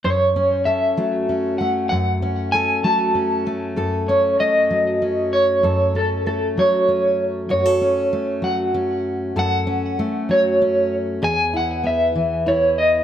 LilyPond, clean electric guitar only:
\new Staff \with { instrumentName = "Clean electric guitar" } { \time 6/8 \key fis \dorian \tempo 4. = 64 cis''4 e''4. fis''8 | fis''4 gis''8 a''4 r8 | r8 cis''8 dis''4. cis''8~ | cis''8 a'8 a'8 cis''4 r8 |
cis''4. fis''4. | fis''4. cis''4 r8 | gis''8 fis''8 e''4 cis''8 dis''8 | }